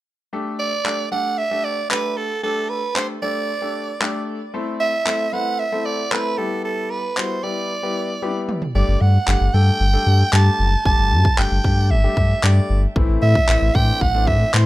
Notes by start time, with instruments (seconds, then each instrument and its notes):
0.33 grand piano A3 D4 G4 A4
0.59 soprano saxophone D5
0.85 grand piano A3 D4 G4 A4, clap
1.12 grand piano A3 D4 G4 A4, soprano saxophone F#5
1.38 soprano saxophone E5
1.51 grand piano A3 D4 G4 A4
1.64 soprano saxophone D5
1.90 grand piano A3 D4 G4 A4, soprano saxophone B4, clap
2.17 soprano saxophone A4
2.43 grand piano A3 D4 G4 A4, soprano saxophone A4
2.70 soprano saxophone B4
2.96 grand piano A3 D4 G4 A4, soprano saxophone C5, clap
3.22 grand piano A3 D4 G4 A4, soprano saxophone D5
3.61 grand piano A3 D4 G4 A4
4.01 grand piano A3 D4 G4 A4, clap
4.54 grand piano A3 C4 E4 A4
4.80 soprano saxophone E5
5.06 grand piano A3 C4 E4 A4, clap
5.33 grand piano A3 C4 E4 B4, soprano saxophone F#5
5.59 soprano saxophone E5
5.72 grand piano A3 C4 E4 A4
5.86 soprano saxophone D5
6.12 grand piano A3 C4 E4 A4, soprano saxophone B4, clap
6.38 grand piano G3 B3 E4 G4, soprano saxophone A4
6.65 soprano saxophone A4
6.91 soprano saxophone B4
7.17 grand piano G3 B3 E4 F#4, soprano saxophone C5, clap
7.43 grand piano G3 B3 E4 G4, soprano saxophone D5
7.83 grand piano G3 B3 E4 G4
8.22 grand piano G3 B3 E4 G4, high tom
8.49 mid tom
8.62 floor tom
8.75 sub bass G1, grand piano G3 A3 D4 G4, soprano saxophone D5
8.88 sub bass G1
9.01 sub bass G2, soprano saxophone F#5
9.27 sub bass G1, grand piano G3 A3 D4 G4, clap
9.41 sub bass G1
9.54 sub bass G2, grand piano G3 A3 D4 A4, soprano saxophone G5
9.80 sub bass G1
9.93 grand piano G3 A3 D4 A4
10.06 sub bass G2
10.33 sub bass G2, grand piano G3 A3 D4 G4, soprano saxophone A5, clap
10.59 sub bass F#1
10.85 sub bass G1, grand piano G3 A3 D4 G4, soprano saxophone A5, kick
10.99 sub bass G1
11.12 sub bass G2
11.25 kick
11.38 sub bass G1, grand piano G3 A3 D4 G4, soprano saxophone G5, clap
11.51 sub bass G1
11.64 sub bass G2, grand piano G3 A3 D4 G4, kick
11.91 sub bass G1, soprano saxophone E5
12.04 grand piano G3 A3 D4 G4
12.17 sub bass G2, kick
12.43 sub bass G2, grand piano G3 A3 D4 G4, soprano saxophone D5, clap
12.70 sub bass G1
12.96 sub bass A1, grand piano E3 A3 C4 E4, kick
13.09 sub bass A1
13.22 sub bass A2, soprano saxophone E5
13.35 kick
13.48 sub bass A1, grand piano E3 A3 C4 E4, clap
13.62 sub bass A1
13.75 sub bass A2, grand piano E3 A3 C4 D4, soprano saxophone G5, kick
14.01 sub bass A1, soprano saxophone F#5, kick
14.14 grand piano E3 A3 C4 D4
14.27 sub bass A2, soprano saxophone E5, kick
14.54 sub bass A2, grand piano E3 A3 C4 E4, soprano saxophone C5, clap